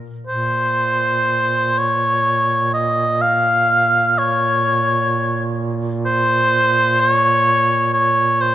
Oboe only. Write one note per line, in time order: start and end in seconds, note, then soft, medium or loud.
0.27 1.80 C5 medium
1.78 2.73 C#5 medium
2.74 3.23 D#5 medium
3.22 4.20 F5 loud
4.18 5.60 C#5 medium
6.06 7.02 C5 loud
7.00 7.93 C#5 loud
7.93 8.43 C#5 medium
8.41 8.55 C5 medium